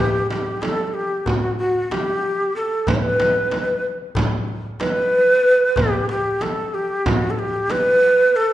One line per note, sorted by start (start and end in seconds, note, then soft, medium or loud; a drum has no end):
0.00 0.30 G4 medium
0.30 0.63 G4 medium
0.30 frame drum medium
0.62 0.87 A4 medium
0.62 darbuka tek medium
0.62 frame drum medium
0.87 0.95 A4 medium
0.94 1.28 G4 medium
1.26 1.58 F#4 medium
1.26 darbuka dum medium
1.26 frame drum medium
1.59 1.93 F#4 medium
1.59 darbuka ka soft
1.91 2.55 G4 medium
1.91 darbuka tek medium
1.91 frame drum medium
2.23 darbuka ka soft
2.56 2.90 A4 medium
2.71 darbuka ka soft
2.87 2.96 B4 medium
2.87 darbuka dum medium
2.87 frame drum medium
2.94 3.04 C#5 medium
3.02 3.84 B4 medium
3.20 darbuka tek medium
3.20 frame drum medium
3.51 darbuka tek medium
3.51 frame drum medium
4.15 darbuka dum medium
4.15 frame drum medium
4.48 darbuka ka soft
4.80 5.79 B4 loud
4.80 darbuka tek medium
4.80 frame drum medium
5.12 darbuka ka soft
5.61 darbuka ka soft
5.76 6.09 G4 medium
5.76 darbuka dum medium
5.76 frame drum medium
6.09 6.43 G4 medium
6.09 darbuka tek medium
6.41 6.76 A4 medium
6.41 darbuka tek medium
6.41 frame drum medium
6.74 7.08 G4 medium
7.06 7.32 F#4 medium
7.06 frame drum medium
7.06 darbuka dum medium
7.30 7.40 A4 medium
7.39 7.72 G4 medium
7.39 darbuka ka soft
7.70 8.37 B4 loud
7.70 darbuka tek medium
7.70 frame drum medium
8.03 darbuka ka soft
8.36 8.53 A4 medium